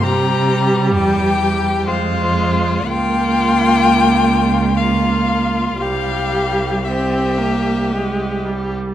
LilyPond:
<<
  \new Staff \with { instrumentName = "Violin" } { \time 3/4 \key c \phrygian \tempo 4 = 60 bes''4 g''4 c''4 | g''2 f''4 | f''4 e''4. r8 | }
  \new Staff \with { instrumentName = "Violin" } { \time 3/4 \key c \phrygian g'4 g'4 f'4 | f'2 f'4 | g'4 g'2 | }
  \new Staff \with { instrumentName = "Viola" } { \clef bass \time 3/4 \key c \phrygian g2 aes4 | bes2 bes4 | g4 c'8 bes8 aes8 g8 | }
  \new Staff \with { instrumentName = "Cello" } { \clef bass \time 3/4 \key c \phrygian c4 e,4 f,4 | des,2. | c,2. | }
>>